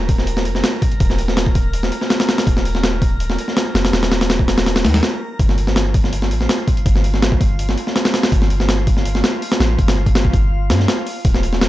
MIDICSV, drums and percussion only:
0, 0, Header, 1, 2, 480
1, 0, Start_track
1, 0, Tempo, 365854
1, 1317, Time_signature, 4, 2, 24, 8
1, 15333, End_track
2, 0, Start_track
2, 0, Title_t, "Drums"
2, 115, Note_on_c, 9, 46, 68
2, 117, Note_on_c, 9, 36, 92
2, 242, Note_on_c, 9, 38, 38
2, 247, Note_off_c, 9, 46, 0
2, 248, Note_off_c, 9, 36, 0
2, 355, Note_on_c, 9, 46, 82
2, 373, Note_off_c, 9, 38, 0
2, 482, Note_on_c, 9, 38, 58
2, 486, Note_off_c, 9, 46, 0
2, 595, Note_on_c, 9, 46, 65
2, 613, Note_off_c, 9, 38, 0
2, 722, Note_on_c, 9, 38, 42
2, 726, Note_off_c, 9, 46, 0
2, 835, Note_off_c, 9, 38, 0
2, 835, Note_on_c, 9, 38, 111
2, 835, Note_on_c, 9, 46, 87
2, 967, Note_off_c, 9, 38, 0
2, 967, Note_off_c, 9, 46, 0
2, 1076, Note_on_c, 9, 46, 69
2, 1077, Note_on_c, 9, 36, 93
2, 1201, Note_on_c, 9, 42, 45
2, 1208, Note_off_c, 9, 36, 0
2, 1208, Note_off_c, 9, 46, 0
2, 1316, Note_on_c, 9, 46, 83
2, 1317, Note_on_c, 9, 36, 102
2, 1332, Note_off_c, 9, 42, 0
2, 1442, Note_on_c, 9, 38, 41
2, 1447, Note_off_c, 9, 46, 0
2, 1448, Note_off_c, 9, 36, 0
2, 1556, Note_on_c, 9, 46, 69
2, 1573, Note_off_c, 9, 38, 0
2, 1682, Note_on_c, 9, 38, 53
2, 1687, Note_off_c, 9, 46, 0
2, 1796, Note_off_c, 9, 38, 0
2, 1796, Note_on_c, 9, 38, 116
2, 1796, Note_on_c, 9, 46, 85
2, 1922, Note_on_c, 9, 36, 91
2, 1927, Note_off_c, 9, 38, 0
2, 1927, Note_off_c, 9, 46, 0
2, 2036, Note_on_c, 9, 46, 68
2, 2037, Note_off_c, 9, 36, 0
2, 2037, Note_on_c, 9, 36, 90
2, 2168, Note_off_c, 9, 36, 0
2, 2168, Note_off_c, 9, 46, 0
2, 2276, Note_on_c, 9, 46, 81
2, 2403, Note_on_c, 9, 38, 55
2, 2407, Note_off_c, 9, 46, 0
2, 2518, Note_on_c, 9, 46, 68
2, 2534, Note_off_c, 9, 38, 0
2, 2643, Note_on_c, 9, 38, 41
2, 2649, Note_off_c, 9, 46, 0
2, 2759, Note_off_c, 9, 38, 0
2, 2759, Note_on_c, 9, 38, 101
2, 2759, Note_on_c, 9, 46, 78
2, 2885, Note_off_c, 9, 38, 0
2, 2885, Note_off_c, 9, 46, 0
2, 2885, Note_on_c, 9, 38, 102
2, 2885, Note_on_c, 9, 46, 78
2, 3000, Note_off_c, 9, 38, 0
2, 3000, Note_off_c, 9, 46, 0
2, 3000, Note_on_c, 9, 38, 98
2, 3000, Note_on_c, 9, 46, 80
2, 3126, Note_off_c, 9, 38, 0
2, 3126, Note_off_c, 9, 46, 0
2, 3126, Note_on_c, 9, 38, 102
2, 3126, Note_on_c, 9, 46, 76
2, 3239, Note_on_c, 9, 36, 104
2, 3242, Note_off_c, 9, 46, 0
2, 3242, Note_on_c, 9, 46, 83
2, 3257, Note_off_c, 9, 38, 0
2, 3368, Note_on_c, 9, 38, 52
2, 3370, Note_off_c, 9, 36, 0
2, 3373, Note_off_c, 9, 46, 0
2, 3481, Note_on_c, 9, 46, 69
2, 3499, Note_off_c, 9, 38, 0
2, 3606, Note_on_c, 9, 38, 55
2, 3612, Note_off_c, 9, 46, 0
2, 3720, Note_off_c, 9, 38, 0
2, 3720, Note_on_c, 9, 38, 113
2, 3720, Note_on_c, 9, 46, 86
2, 3851, Note_off_c, 9, 38, 0
2, 3851, Note_off_c, 9, 46, 0
2, 3959, Note_on_c, 9, 36, 93
2, 3959, Note_on_c, 9, 46, 69
2, 4090, Note_off_c, 9, 36, 0
2, 4091, Note_off_c, 9, 46, 0
2, 4201, Note_on_c, 9, 46, 81
2, 4325, Note_on_c, 9, 38, 55
2, 4332, Note_off_c, 9, 46, 0
2, 4441, Note_on_c, 9, 46, 67
2, 4456, Note_off_c, 9, 38, 0
2, 4565, Note_on_c, 9, 38, 41
2, 4573, Note_off_c, 9, 46, 0
2, 4679, Note_off_c, 9, 38, 0
2, 4679, Note_on_c, 9, 38, 113
2, 4679, Note_on_c, 9, 46, 83
2, 4810, Note_off_c, 9, 38, 0
2, 4810, Note_off_c, 9, 46, 0
2, 4921, Note_on_c, 9, 38, 101
2, 4921, Note_on_c, 9, 46, 78
2, 5046, Note_off_c, 9, 38, 0
2, 5046, Note_off_c, 9, 46, 0
2, 5046, Note_on_c, 9, 38, 104
2, 5046, Note_on_c, 9, 46, 79
2, 5161, Note_off_c, 9, 38, 0
2, 5161, Note_off_c, 9, 46, 0
2, 5161, Note_on_c, 9, 38, 104
2, 5161, Note_on_c, 9, 46, 75
2, 5285, Note_off_c, 9, 38, 0
2, 5285, Note_off_c, 9, 46, 0
2, 5285, Note_on_c, 9, 38, 104
2, 5285, Note_on_c, 9, 46, 76
2, 5400, Note_off_c, 9, 38, 0
2, 5400, Note_off_c, 9, 46, 0
2, 5400, Note_on_c, 9, 38, 104
2, 5400, Note_on_c, 9, 46, 78
2, 5526, Note_off_c, 9, 38, 0
2, 5526, Note_off_c, 9, 46, 0
2, 5526, Note_on_c, 9, 38, 102
2, 5526, Note_on_c, 9, 46, 78
2, 5639, Note_off_c, 9, 38, 0
2, 5639, Note_off_c, 9, 46, 0
2, 5639, Note_on_c, 9, 38, 117
2, 5639, Note_on_c, 9, 46, 88
2, 5764, Note_on_c, 9, 36, 89
2, 5771, Note_off_c, 9, 38, 0
2, 5771, Note_off_c, 9, 46, 0
2, 5878, Note_on_c, 9, 38, 100
2, 5878, Note_on_c, 9, 46, 77
2, 5895, Note_off_c, 9, 36, 0
2, 6004, Note_off_c, 9, 38, 0
2, 6004, Note_off_c, 9, 46, 0
2, 6004, Note_on_c, 9, 38, 103
2, 6004, Note_on_c, 9, 46, 77
2, 6119, Note_off_c, 9, 38, 0
2, 6119, Note_off_c, 9, 46, 0
2, 6119, Note_on_c, 9, 38, 96
2, 6119, Note_on_c, 9, 46, 74
2, 6243, Note_off_c, 9, 38, 0
2, 6243, Note_off_c, 9, 46, 0
2, 6243, Note_on_c, 9, 38, 102
2, 6243, Note_on_c, 9, 46, 79
2, 6358, Note_off_c, 9, 38, 0
2, 6358, Note_off_c, 9, 46, 0
2, 6358, Note_on_c, 9, 38, 99
2, 6358, Note_on_c, 9, 46, 77
2, 6483, Note_off_c, 9, 38, 0
2, 6483, Note_off_c, 9, 46, 0
2, 6483, Note_on_c, 9, 38, 104
2, 6483, Note_on_c, 9, 46, 74
2, 6597, Note_off_c, 9, 38, 0
2, 6597, Note_off_c, 9, 46, 0
2, 6597, Note_on_c, 9, 38, 105
2, 6597, Note_on_c, 9, 46, 76
2, 6728, Note_off_c, 9, 38, 0
2, 6728, Note_off_c, 9, 46, 0
2, 7078, Note_on_c, 9, 36, 103
2, 7078, Note_on_c, 9, 46, 86
2, 7204, Note_on_c, 9, 38, 50
2, 7209, Note_off_c, 9, 46, 0
2, 7210, Note_off_c, 9, 36, 0
2, 7319, Note_on_c, 9, 46, 68
2, 7335, Note_off_c, 9, 38, 0
2, 7442, Note_on_c, 9, 38, 56
2, 7450, Note_off_c, 9, 46, 0
2, 7557, Note_off_c, 9, 38, 0
2, 7557, Note_on_c, 9, 38, 117
2, 7557, Note_on_c, 9, 46, 83
2, 7688, Note_off_c, 9, 38, 0
2, 7688, Note_off_c, 9, 46, 0
2, 7797, Note_on_c, 9, 46, 68
2, 7798, Note_on_c, 9, 36, 97
2, 7924, Note_on_c, 9, 38, 39
2, 7928, Note_off_c, 9, 46, 0
2, 7929, Note_off_c, 9, 36, 0
2, 8038, Note_on_c, 9, 46, 86
2, 8056, Note_off_c, 9, 38, 0
2, 8164, Note_on_c, 9, 38, 57
2, 8170, Note_off_c, 9, 46, 0
2, 8280, Note_on_c, 9, 46, 67
2, 8295, Note_off_c, 9, 38, 0
2, 8405, Note_on_c, 9, 38, 43
2, 8411, Note_off_c, 9, 46, 0
2, 8519, Note_off_c, 9, 38, 0
2, 8519, Note_on_c, 9, 38, 116
2, 8519, Note_on_c, 9, 46, 86
2, 8650, Note_off_c, 9, 38, 0
2, 8650, Note_off_c, 9, 46, 0
2, 8758, Note_on_c, 9, 36, 92
2, 8760, Note_on_c, 9, 46, 66
2, 8884, Note_on_c, 9, 42, 44
2, 8890, Note_off_c, 9, 36, 0
2, 8892, Note_off_c, 9, 46, 0
2, 8998, Note_on_c, 9, 36, 108
2, 8998, Note_on_c, 9, 46, 84
2, 9016, Note_off_c, 9, 42, 0
2, 9125, Note_on_c, 9, 38, 43
2, 9129, Note_off_c, 9, 36, 0
2, 9130, Note_off_c, 9, 46, 0
2, 9239, Note_on_c, 9, 46, 69
2, 9256, Note_off_c, 9, 38, 0
2, 9365, Note_on_c, 9, 38, 51
2, 9370, Note_off_c, 9, 46, 0
2, 9479, Note_off_c, 9, 38, 0
2, 9479, Note_on_c, 9, 38, 116
2, 9479, Note_on_c, 9, 46, 89
2, 9603, Note_on_c, 9, 36, 90
2, 9610, Note_off_c, 9, 38, 0
2, 9610, Note_off_c, 9, 46, 0
2, 9718, Note_off_c, 9, 36, 0
2, 9718, Note_on_c, 9, 36, 94
2, 9720, Note_on_c, 9, 46, 66
2, 9849, Note_off_c, 9, 36, 0
2, 9851, Note_off_c, 9, 46, 0
2, 9959, Note_on_c, 9, 46, 83
2, 10087, Note_on_c, 9, 38, 57
2, 10090, Note_off_c, 9, 46, 0
2, 10202, Note_on_c, 9, 46, 65
2, 10218, Note_off_c, 9, 38, 0
2, 10326, Note_on_c, 9, 38, 41
2, 10333, Note_off_c, 9, 46, 0
2, 10440, Note_off_c, 9, 38, 0
2, 10440, Note_on_c, 9, 38, 101
2, 10440, Note_on_c, 9, 46, 79
2, 10564, Note_off_c, 9, 38, 0
2, 10564, Note_off_c, 9, 46, 0
2, 10564, Note_on_c, 9, 38, 104
2, 10564, Note_on_c, 9, 46, 80
2, 10677, Note_off_c, 9, 38, 0
2, 10677, Note_off_c, 9, 46, 0
2, 10677, Note_on_c, 9, 38, 104
2, 10677, Note_on_c, 9, 46, 78
2, 10803, Note_off_c, 9, 38, 0
2, 10803, Note_off_c, 9, 46, 0
2, 10803, Note_on_c, 9, 38, 107
2, 10803, Note_on_c, 9, 46, 79
2, 10918, Note_off_c, 9, 46, 0
2, 10918, Note_on_c, 9, 36, 108
2, 10918, Note_on_c, 9, 46, 85
2, 10934, Note_off_c, 9, 38, 0
2, 11044, Note_on_c, 9, 38, 50
2, 11049, Note_off_c, 9, 36, 0
2, 11049, Note_off_c, 9, 46, 0
2, 11156, Note_on_c, 9, 46, 69
2, 11175, Note_off_c, 9, 38, 0
2, 11284, Note_on_c, 9, 38, 55
2, 11288, Note_off_c, 9, 46, 0
2, 11397, Note_off_c, 9, 38, 0
2, 11397, Note_on_c, 9, 38, 118
2, 11397, Note_on_c, 9, 46, 86
2, 11528, Note_off_c, 9, 38, 0
2, 11528, Note_off_c, 9, 46, 0
2, 11638, Note_on_c, 9, 36, 90
2, 11638, Note_on_c, 9, 46, 68
2, 11764, Note_on_c, 9, 38, 38
2, 11769, Note_off_c, 9, 36, 0
2, 11769, Note_off_c, 9, 46, 0
2, 11879, Note_on_c, 9, 46, 81
2, 11895, Note_off_c, 9, 38, 0
2, 12005, Note_on_c, 9, 38, 56
2, 12011, Note_off_c, 9, 46, 0
2, 12120, Note_off_c, 9, 38, 0
2, 12120, Note_on_c, 9, 38, 105
2, 12120, Note_on_c, 9, 46, 78
2, 12252, Note_off_c, 9, 38, 0
2, 12252, Note_off_c, 9, 46, 0
2, 12361, Note_on_c, 9, 46, 71
2, 12486, Note_off_c, 9, 46, 0
2, 12486, Note_on_c, 9, 38, 106
2, 12486, Note_on_c, 9, 46, 77
2, 12601, Note_off_c, 9, 38, 0
2, 12601, Note_off_c, 9, 46, 0
2, 12601, Note_on_c, 9, 38, 102
2, 12601, Note_on_c, 9, 46, 77
2, 12732, Note_off_c, 9, 38, 0
2, 12732, Note_off_c, 9, 46, 0
2, 12839, Note_on_c, 9, 36, 87
2, 12840, Note_on_c, 9, 46, 59
2, 12966, Note_off_c, 9, 46, 0
2, 12966, Note_on_c, 9, 38, 106
2, 12966, Note_on_c, 9, 46, 79
2, 12970, Note_off_c, 9, 36, 0
2, 13097, Note_off_c, 9, 38, 0
2, 13097, Note_off_c, 9, 46, 0
2, 13204, Note_on_c, 9, 36, 84
2, 13205, Note_on_c, 9, 46, 63
2, 13321, Note_off_c, 9, 46, 0
2, 13321, Note_on_c, 9, 38, 112
2, 13321, Note_on_c, 9, 46, 89
2, 13336, Note_off_c, 9, 36, 0
2, 13445, Note_on_c, 9, 36, 93
2, 13452, Note_off_c, 9, 38, 0
2, 13452, Note_off_c, 9, 46, 0
2, 13559, Note_off_c, 9, 36, 0
2, 13559, Note_on_c, 9, 36, 94
2, 13561, Note_on_c, 9, 46, 65
2, 13690, Note_off_c, 9, 36, 0
2, 13692, Note_off_c, 9, 46, 0
2, 14038, Note_on_c, 9, 38, 99
2, 14038, Note_on_c, 9, 46, 80
2, 14166, Note_off_c, 9, 38, 0
2, 14166, Note_on_c, 9, 38, 41
2, 14169, Note_off_c, 9, 46, 0
2, 14279, Note_off_c, 9, 38, 0
2, 14279, Note_on_c, 9, 38, 113
2, 14279, Note_on_c, 9, 46, 88
2, 14410, Note_off_c, 9, 38, 0
2, 14410, Note_off_c, 9, 46, 0
2, 14518, Note_on_c, 9, 46, 79
2, 14650, Note_off_c, 9, 46, 0
2, 14757, Note_on_c, 9, 46, 85
2, 14758, Note_on_c, 9, 36, 109
2, 14883, Note_on_c, 9, 38, 51
2, 14888, Note_off_c, 9, 46, 0
2, 14889, Note_off_c, 9, 36, 0
2, 14998, Note_on_c, 9, 46, 70
2, 15014, Note_off_c, 9, 38, 0
2, 15123, Note_on_c, 9, 38, 54
2, 15130, Note_off_c, 9, 46, 0
2, 15238, Note_off_c, 9, 38, 0
2, 15238, Note_on_c, 9, 38, 120
2, 15238, Note_on_c, 9, 46, 89
2, 15333, Note_off_c, 9, 38, 0
2, 15333, Note_off_c, 9, 46, 0
2, 15333, End_track
0, 0, End_of_file